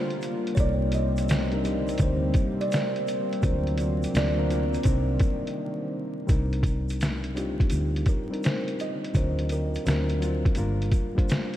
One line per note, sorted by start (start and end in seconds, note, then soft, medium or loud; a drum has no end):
0.00 0.56 D3 medium
0.00 0.49 G3 medium
0.00 0.56 G3 medium
0.00 0.50 A#3 medium
0.00 3.39 A#3 medium
0.00 0.50 D4 medium
0.00 0.50 F4 medium
0.00 0.56 F4 medium
0.00 0.51 A#4 loud
0.00 0.56 C5 medium
0.10 closed hi-hat soft
0.22 closed hi-hat medium
0.22 shaker soft
0.47 closed hi-hat soft
0.55 1.96 C2 loud
0.55 4.82 C3 medium
0.55 1.43 G3 medium
0.55 3.40 G3 medium
0.55 1.44 A#3 medium
0.55 1.43 C4 medium
0.55 6.25 C4 medium
0.55 1.44 D#4 medium
0.55 1.45 A#4 medium
0.55 0.59 C#5 medium
0.55 kick loud
0.55 closed hi-hat medium
0.55 shaker medium
0.60 0.95 D5 loud
0.92 1.61 D#5 loud
0.92 closed hi-hat medium
0.92 shaker soft
1.17 closed hi-hat medium
1.17 shaker medium
1.29 snare loud
1.29 closed hi-hat medium
1.29 shaker medium
1.51 1.62 G3 medium
1.51 1.63 C4 medium
1.51 1.64 D4 medium
1.51 1.64 D#4 medium
1.51 1.64 A#4 medium
1.51 closed hi-hat soft
1.63 3.00 G3 medium
1.63 3.00 C4 medium
1.63 3.01 D4 medium
1.63 3.01 D#4 medium
1.63 3.01 G4 medium
1.63 closed hi-hat medium
1.63 shaker medium
1.88 closed hi-hat soft
1.88 shaker soft
1.98 2.31 D2 loud
1.98 kick medium
1.98 closed hi-hat medium
1.98 shaker medium
2.02 2.57 C5 loud
2.34 kick medium
2.34 closed hi-hat medium
2.34 shaker medium
2.61 2.68 D5 loud
2.61 closed hi-hat soft
2.68 2.72 C5 medium
2.68 shaker medium
2.72 3.40 A#4 medium
2.72 snare loud
2.72 closed hi-hat medium
2.96 closed hi-hat soft
3.08 closed hi-hat medium
3.08 shaker soft
3.33 closed hi-hat soft
3.41 4.05 D2 loud
3.41 4.12 F#3 medium
3.41 4.14 F#3 medium
3.41 6.26 A#3 medium
3.41 4.13 C4 medium
3.41 4.14 D4 medium
3.41 4.14 F4 medium
3.41 4.15 A#4 medium
3.41 4.17 C5 medium
3.41 kick loud
3.41 closed hi-hat medium
3.41 shaker medium
3.67 closed hi-hat soft
3.78 closed hi-hat medium
3.78 shaker soft
4.03 closed hi-hat medium
4.03 shaker soft
4.13 4.76 D2 loud
4.13 4.35 F#3 medium
4.13 4.86 F#3 medium
4.13 4.36 C4 medium
4.13 4.36 D4 medium
4.13 4.37 F4 medium
4.13 4.37 A#4 medium
4.13 4.52 D5 loud
4.13 snare loud
4.13 closed hi-hat medium
4.13 shaker medium
4.36 4.47 F#3 medium
4.36 4.48 C4 medium
4.36 4.48 D4 medium
4.36 4.50 F4 medium
4.36 4.50 A#4 medium
4.48 4.85 F#3 medium
4.48 4.84 C4 medium
4.48 4.84 D4 medium
4.48 4.86 F4 medium
4.48 4.86 A#4 medium
4.48 5.54 C5 medium
4.48 closed hi-hat medium
4.48 shaker soft
4.74 closed hi-hat soft
4.74 shaker soft
4.83 5.16 C2 loud
4.83 6.28 C3 medium
4.83 6.27 D#3 medium
4.83 6.21 G3 medium
4.83 6.21 C4 medium
4.83 6.22 D4 medium
4.83 6.22 D#4 medium
4.83 6.22 A#4 medium
4.83 kick medium
4.83 closed hi-hat medium
4.83 shaker medium
5.20 kick loud
5.20 closed hi-hat medium
5.20 shaker medium
5.47 closed hi-hat soft
6.27 7.68 C2 loud
6.27 7.30 G3 medium
6.27 7.30 C4 medium
6.27 7.31 D4 medium
6.27 7.31 D#4 medium
6.27 7.31 A#4 medium
6.27 kick loud
6.27 closed hi-hat medium
6.27 shaker medium
6.53 closed hi-hat soft
6.63 kick medium
6.63 closed hi-hat medium
6.63 shaker soft
6.89 closed hi-hat medium
6.89 shaker soft
7.01 snare loud
7.01 closed hi-hat medium
7.01 shaker medium
7.24 closed hi-hat soft
7.34 8.22 G3 medium
7.34 8.22 C4 medium
7.34 8.23 D4 medium
7.34 8.23 D#4 medium
7.34 8.23 F4 medium
7.34 8.10 G4 medium
7.34 closed hi-hat medium
7.34 shaker soft
7.60 kick medium
7.60 closed hi-hat soft
7.70 8.03 D2 medium
7.70 closed hi-hat medium
7.70 shaker medium
7.96 closed hi-hat soft
8.06 8.45 A#4 medium
8.06 kick medium
8.06 closed hi-hat medium
8.06 shaker soft
8.30 9.10 G3 medium
8.30 9.10 C4 medium
8.30 9.10 D4 medium
8.30 9.11 D#4 medium
8.30 9.11 A#4 medium
8.30 closed hi-hat soft
8.43 8.81 C5 medium
8.43 snare loud
8.43 closed hi-hat medium
8.43 shaker medium
8.68 closed hi-hat soft
8.79 9.17 D#5 medium
8.79 closed hi-hat medium
8.79 shaker soft
9.05 closed hi-hat soft
9.13 9.76 D2 medium
9.13 9.84 F#3 medium
9.13 9.84 C4 medium
9.13 9.85 D4 medium
9.13 9.86 F4 medium
9.13 9.87 A#4 medium
9.13 9.52 C5 medium
9.13 kick loud
9.13 closed hi-hat medium
9.13 shaker medium
9.39 closed hi-hat soft
9.49 11.30 A#4 medium
9.49 closed hi-hat medium
9.49 shaker soft
9.74 closed hi-hat medium
9.74 shaker soft
9.85 10.47 D2 medium
9.85 10.19 F#3 medium
9.85 10.20 C4 medium
9.85 10.20 D4 medium
9.85 10.21 F4 medium
9.85 10.21 A#4 medium
9.85 snare loud
9.85 closed hi-hat medium
9.85 shaker medium
10.10 closed hi-hat medium
10.20 10.57 F#3 medium
10.20 10.57 C4 medium
10.20 10.56 D4 medium
10.20 10.57 F4 medium
10.20 10.58 C5 medium
10.20 closed hi-hat medium
10.20 shaker soft
10.45 kick medium
10.45 closed hi-hat soft
10.55 10.88 G1 medium
10.55 11.11 G3 medium
10.55 11.11 A#3 medium
10.55 11.12 D4 medium
10.55 11.12 F4 medium
10.55 closed hi-hat medium
10.55 shaker medium
10.59 11.12 A#4 medium
10.82 closed hi-hat soft
10.91 kick medium
10.91 closed hi-hat medium
10.91 shaker medium
11.15 11.57 G3 medium
11.15 11.57 A#3 medium
11.15 11.57 D4 medium
11.15 11.57 F4 medium
11.15 11.57 C5 medium
11.15 kick medium
11.15 closed hi-hat soft
11.29 11.57 A#4 medium
11.29 snare loud
11.29 closed hi-hat medium
11.29 shaker medium
11.54 closed hi-hat soft